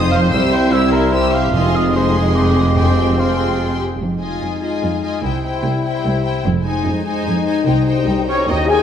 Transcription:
0.00 0.29 F1 medium
0.00 0.29 F2 medium
0.00 1.37 C3 medium
0.00 0.30 F3 medium
0.00 1.49 C4 medium
0.00 0.30 D#4 medium
0.00 0.11 F4 medium
0.00 0.11 C5 medium
0.00 0.71 C5 medium
0.00 0.10 D#6 medium
0.12 0.32 D#4 soft
0.12 0.32 D#5 soft
0.12 0.21 F5 medium
0.12 0.32 C6 medium
0.31 1.53 C2 medium
0.31 1.54 C2 medium
0.31 1.37 G3 medium
0.31 1.53 E4 medium
0.31 0.51 G4 medium
0.31 0.51 C5 medium
0.31 0.51 E6 medium
0.52 0.72 E4 soft
0.52 0.72 E5 soft
0.52 0.74 G5 medium
0.52 0.73 C6 soft
0.71 1.12 E4 medium
0.71 0.93 G4 medium
0.71 0.93 C5 medium
0.71 0.92 E5 medium
0.71 0.93 E6 soft
0.92 1.13 E4 soft
0.92 1.14 A#4 medium
0.92 1.13 E5 soft
0.92 1.13 C6 medium
1.12 1.53 G4 medium
1.12 1.32 G4 medium
1.12 1.35 C5 medium
1.12 1.32 C5 soft
1.12 1.32 E6 soft
1.33 1.54 E4 soft
1.33 1.54 E5 soft
1.33 1.77 F5 medium
1.33 1.53 C6 soft
1.53 3.77 F1 medium
1.53 2.11 F2 medium
1.53 3.77 F2 medium
1.53 3.77 C3 medium
1.53 3.77 G#3 medium
1.53 3.77 C4 medium
1.53 2.59 D#4 medium
1.53 1.94 F4 medium
1.53 1.91 G#4 medium
1.53 1.91 D#5 medium
1.53 1.92 C6 soft
1.76 1.95 D#5 medium
1.93 2.77 G#3 medium
1.93 2.75 G#4 medium
1.93 2.15 C5 medium
1.93 2.75 D#5 medium
1.93 2.75 C6 soft
2.17 2.38 G#4 medium
2.36 2.77 G4 medium
2.76 3.35 F2 medium
2.76 3.78 C4 soft
2.76 3.78 F4 soft
2.76 3.21 G4 medium
2.76 3.17 G#4 soft
2.76 3.18 G5 soft
2.76 3.18 C6 soft
3.17 3.81 F4 medium
3.17 3.80 G#4 soft
3.17 3.37 C5 medium
3.17 3.80 G5 soft
3.17 3.80 C6 soft
3.39 3.60 G#4 soft
3.58 3.79 F4 soft
3.80 3.89 G4 soft
4.00 4.35 F1 soft
4.00 4.36 F2 soft
4.00 5.19 G#3 soft
4.00 5.19 D#4 soft
4.21 4.60 F4 soft
4.21 4.61 D#5 soft
4.21 4.61 G#5 soft
4.42 4.76 F2 soft
4.62 5.02 F4 soft
4.62 5.03 D#5 soft
4.62 5.02 G#5 soft
4.83 5.17 F2 soft
5.03 5.23 F4 soft
5.03 5.24 D#5 soft
5.03 5.23 G#5 soft
5.23 5.57 C2 medium
5.23 5.58 C2 medium
5.23 6.41 G3 soft
5.23 5.43 E4 soft
5.23 6.41 E4 soft
5.23 5.43 C5 soft
5.23 5.44 G5 soft
5.44 5.84 E4 soft
5.44 5.83 C5 soft
5.44 5.83 G5 soft
5.64 5.98 C2 medium
5.84 6.23 E4 soft
5.84 6.24 C5 soft
5.84 6.22 G5 soft
6.05 6.39 C2 medium
6.24 6.44 E4 soft
6.24 6.45 C5 soft
6.24 6.44 G5 soft
6.45 6.79 F1 medium
6.45 6.79 F2 medium
6.45 7.63 G#3 medium
6.45 8.24 D#4 medium
6.45 cymbal swell soft
6.64 7.03 D#4 soft
6.64 7.04 C5 soft
6.64 7.03 G#5 soft
6.85 7.19 F2 medium
7.04 7.45 D#4 soft
7.04 7.44 C5 soft
7.04 7.44 G#5 medium
7.26 7.60 F2 medium
7.45 7.65 D#4 soft
7.45 7.64 C5 soft
7.45 7.66 G#5 soft
7.65 8.00 C2 medium
7.65 8.01 C2 medium
7.65 8.25 G3 medium
7.65 7.86 D#4 soft
7.65 7.84 C5 soft
7.65 7.86 G5 soft
7.85 8.27 D#4 soft
7.85 8.26 C5 soft
7.85 8.27 G5 soft
8.07 8.42 C2 medium
8.27 8.46 C#4 medium
8.27 8.52 C#4 medium
8.27 8.48 D#4 soft
8.27 8.48 C5 soft
8.27 8.47 C#5 medium
8.27 8.48 C#5 medium
8.27 8.47 G5 soft
8.47 8.82 D#2 medium
8.47 8.68 C#4 medium
8.47 8.69 D#4 medium
8.47 8.69 D#4 soft
8.47 8.70 D#4 medium
8.47 8.68 C#5 soft
8.47 8.70 D#5 medium
8.47 8.69 D#5 medium
8.47 8.70 D#5 medium
8.47 8.69 G5 soft
8.67 8.82 D#4 soft
8.67 8.82 G#4 medium
8.67 8.82 C#5 soft
8.67 8.82 G5 soft
8.67 8.82 G#5 medium
8.72 8.82 G#4 medium

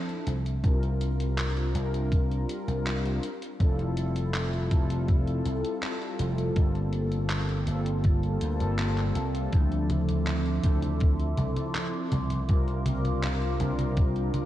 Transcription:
0.00 0.24 F3 medium
0.00 0.24 C4 medium
0.00 0.25 D4 medium
0.00 0.25 E4 medium
0.00 0.25 A4 medium
0.09 closed hi-hat soft
0.27 0.57 C2 medium
0.27 closed hi-hat medium
0.46 closed hi-hat soft
0.62 1.70 C2 loud
0.62 1.70 G3 medium
0.62 1.70 C4 medium
0.62 1.71 D4 medium
0.62 1.71 F4 medium
0.62 1.71 A#4 medium
0.62 kick loud
0.62 closed hi-hat medium
0.83 closed hi-hat soft
1.01 closed hi-hat medium
1.20 closed hi-hat medium
1.38 clap loud
1.38 closed hi-hat medium
1.57 closed hi-hat soft
1.73 2.44 C2 medium
1.73 3.20 G3 medium
1.73 3.20 C4 medium
1.73 3.21 D4 medium
1.73 3.21 F4 medium
1.73 3.22 A#4 loud
1.73 closed hi-hat medium
1.94 closed hi-hat medium
2.12 kick loud
2.12 closed hi-hat medium
2.32 closed hi-hat soft
2.49 closed hi-hat medium
2.68 3.18 C2 medium
2.68 closed hi-hat medium
2.87 clap loud
2.87 closed hi-hat medium
3.06 closed hi-hat soft
3.23 closed hi-hat loud
3.42 closed hi-hat soft
3.58 4.66 F1 medium
3.58 4.66 G3 medium
3.58 4.66 C4 medium
3.58 4.67 E4 medium
3.58 4.67 F4 medium
3.58 4.68 A4 medium
3.58 kick loud
3.58 closed hi-hat medium
3.79 closed hi-hat soft
3.97 closed hi-hat medium
4.16 closed hi-hat medium
4.34 clap loud
4.34 closed hi-hat medium
4.53 closed hi-hat soft
4.69 5.40 F1 medium
4.69 6.51 G3 medium
4.69 6.52 C4 medium
4.69 6.52 E4 medium
4.69 6.52 F4 medium
4.69 6.53 A4 loud
4.69 kick loud
4.69 closed hi-hat medium
4.90 closed hi-hat medium
5.08 kick loud
5.08 closed hi-hat medium
5.27 closed hi-hat soft
5.45 5.61 C2 medium
5.45 closed hi-hat medium
5.64 closed hi-hat medium
5.82 clap loud
5.82 closed hi-hat soft
6.02 closed hi-hat soft
6.19 6.50 F1 medium
6.19 closed hi-hat medium
6.38 closed hi-hat medium
6.55 7.62 G1 loud
6.55 7.62 G3 medium
6.55 7.63 A#3 medium
6.55 7.63 C4 medium
6.55 7.63 F4 medium
6.55 7.64 A4 medium
6.55 kick loud
6.55 closed hi-hat soft
6.75 closed hi-hat soft
6.93 closed hi-hat medium
7.12 closed hi-hat soft
7.30 clap loud
7.30 closed hi-hat soft
7.49 closed hi-hat soft
7.65 8.36 G1 medium
7.65 8.56 G3 medium
7.65 8.56 A#3 medium
7.65 8.56 C4 medium
7.65 8.57 F4 medium
7.65 8.57 A4 loud
7.65 closed hi-hat medium
7.86 closed hi-hat medium
8.04 kick loud
8.04 closed hi-hat medium
8.23 closed hi-hat soft
8.41 8.61 D2 medium
8.41 closed hi-hat medium
8.59 9.10 G1 medium
8.59 9.47 G3 loud
8.59 9.48 A#3 medium
8.59 9.48 C4 medium
8.59 9.49 F4 medium
8.59 9.49 A4 loud
8.59 closed hi-hat medium
8.79 clap loud
8.79 closed hi-hat medium
8.98 clap soft
8.98 closed hi-hat soft
9.15 9.46 C2 medium
9.15 closed hi-hat medium
9.35 closed hi-hat soft
9.51 10.59 D2 medium
9.51 10.59 F3 medium
9.51 12.09 F3 medium
9.51 10.59 C4 medium
9.51 10.59 D4 medium
9.51 10.60 E4 medium
9.51 10.60 A4 medium
9.51 12.09 E5 medium
9.51 14.45 C6 medium
9.51 14.45 D6 medium
9.51 kick loud
9.51 closed hi-hat soft
9.51 high conga soft
9.72 closed hi-hat soft
9.90 closed hi-hat medium
9.90 high conga medium
10.09 closed hi-hat soft
10.09 high conga soft
10.27 clap loud
10.27 closed hi-hat soft
10.27 high conga soft
10.46 closed hi-hat soft
10.62 11.33 D2 medium
10.62 12.09 F3 medium
10.62 12.09 C4 medium
10.62 12.10 D4 medium
10.62 12.10 E4 medium
10.62 12.10 A4 loud
10.62 kick loud
10.62 closed hi-hat medium
10.62 high conga medium
10.82 closed hi-hat soft
10.82 high conga soft
11.00 kick loud
11.00 closed hi-hat soft
11.00 high conga soft
11.19 closed hi-hat soft
11.37 11.53 C2 medium
11.37 closed hi-hat medium
11.37 high conga medium
11.56 closed hi-hat soft
11.56 high conga soft
11.75 clap loud
11.75 closed hi-hat soft
11.75 high conga soft
11.93 closed hi-hat soft
12.12 12.42 C2 medium
12.12 14.45 A#4 medium
12.12 14.45 F5 medium
12.12 closed hi-hat medium
12.12 high conga medium
12.30 closed hi-hat soft
12.30 high conga soft
12.47 13.55 C2 medium
12.47 13.55 G3 medium
12.47 13.55 C4 medium
12.47 13.56 D4 medium
12.47 13.56 F4 medium
12.47 13.56 A#4 medium
12.47 kick loud
12.47 closed hi-hat soft
12.47 high conga soft
12.68 closed hi-hat soft
12.86 closed hi-hat medium
12.86 high conga medium
13.05 closed hi-hat soft
13.05 high conga soft
13.23 clap loud
13.23 closed hi-hat soft
13.23 high conga soft
13.42 closed hi-hat soft
13.58 14.29 C2 medium
13.58 14.45 G3 medium
13.58 14.45 C4 medium
13.58 14.45 D4 medium
13.58 14.45 F4 medium
13.58 14.45 A#4 loud
13.58 closed hi-hat medium
13.58 high conga medium
13.79 closed hi-hat soft
13.79 high conga soft
13.97 kick loud
13.97 closed hi-hat medium
13.97 high conga soft
14.16 closed hi-hat soft
14.34 closed hi-hat medium
14.34 high conga medium

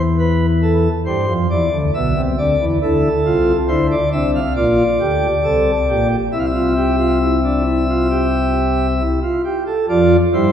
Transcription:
0.00 0.88 E2 medium
0.00 0.87 E3 medium
0.19 0.46 B4 medium
0.62 0.89 A4 medium
1.06 1.25 G2 medium
1.06 1.25 G3 medium
1.06 1.33 C5 medium
1.28 1.47 F2 medium
1.28 1.47 F3 medium
1.50 1.69 E2 medium
1.50 1.69 E3 medium
1.50 1.77 D5 medium
1.72 1.91 D2 medium
1.72 1.91 D3 medium
1.94 2.13 B1 medium
1.94 2.13 B2 medium
1.94 2.21 E5 medium
2.17 2.35 C2 medium
2.17 2.35 C3 medium
2.38 2.56 D2 medium
2.38 2.57 D3 medium
2.38 2.65 D5 medium
2.60 2.78 E2 medium
2.60 2.78 E3 medium
2.82 3.08 D2 medium
2.82 3.09 D3 medium
2.82 3.08 E4 medium
2.82 3.56 A4 medium
3.25 3.52 C2 medium
3.25 3.52 C3 medium
3.25 3.52 F4 medium
3.68 3.95 D2 medium
3.68 3.95 D3 medium
3.68 3.95 E4 medium
3.68 3.87 C5 medium
3.91 4.09 D5 medium
4.12 4.39 C2 medium
4.12 4.39 C3 medium
4.12 4.39 D4 medium
4.12 4.31 E5 medium
4.35 4.53 F5 medium
4.56 4.83 A#1 medium
4.56 4.83 A#2 medium
4.56 4.83 F4 medium
4.56 6.08 D5 medium
5.00 5.27 D2 medium
5.00 5.27 D3 medium
5.00 5.27 G4 medium
5.43 5.71 C2 medium
5.43 5.71 C3 medium
5.43 5.71 A4 medium
5.88 6.16 A#1 medium
5.88 6.16 A#2 medium
5.88 6.16 G4 medium
6.32 9.01 C2 medium
6.32 9.01 C3 medium
6.32 6.51 E4 medium
6.32 6.38 E5 medium
6.39 6.46 F5 medium
6.46 9.03 E5 medium
6.54 6.73 F4 medium
6.76 6.96 G4 medium
6.99 7.18 F4 medium
7.21 7.40 E4 medium
7.44 7.63 D4 medium
7.65 7.85 E4 medium
7.89 8.08 F4 medium
8.10 8.87 G4 medium
9.01 9.19 E4 medium
9.23 9.41 F4 medium
9.44 9.63 G4 medium
9.67 9.86 A4 medium
9.89 10.16 F2 medium
9.89 10.16 F3 medium
9.89 10.16 F4 medium
9.89 10.17 D5 medium
10.33 10.52 G2 medium
10.33 10.52 G3 medium
10.33 10.52 E4 medium
10.33 10.52 C5 medium

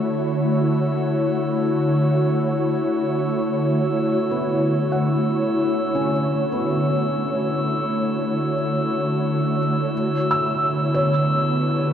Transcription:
0.00 9.91 D3 medium
0.00 9.91 A3 medium
0.00 1.63 B3 medium
0.00 11.13 E4 medium
0.00 9.91 F#4 medium
0.00 2.92 C#5 medium
0.00 11.92 C#5 medium
0.00 11.93 E6 medium
4.31 6.12 B3 medium
4.92 8.54 F#5 medium
5.95 9.57 C#4 medium
6.52 10.14 B3 medium
9.93 11.93 D3 medium
10.10 11.93 B3 medium
10.31 11.93 E6 medium
10.52 11.93 B4 medium
10.94 11.93 C#5 medium
11.07 11.93 G4 medium

